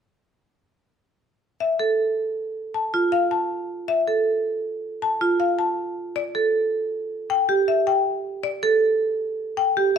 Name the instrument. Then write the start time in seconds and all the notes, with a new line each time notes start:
marimba
1.60 E5
1.79 A4
2.74 A5
2.94 F4
3.12 F5
3.31 A5
3.88 E5
4.08 A4
5.02 A5
5.21 F4
5.40 F5
5.59 A5
6.16 D5
6.35 A4
7.30 G5
7.49 G4
7.68 E5
7.87 G5
8.43 D5
8.63 A4
9.57 G5
9.77 G4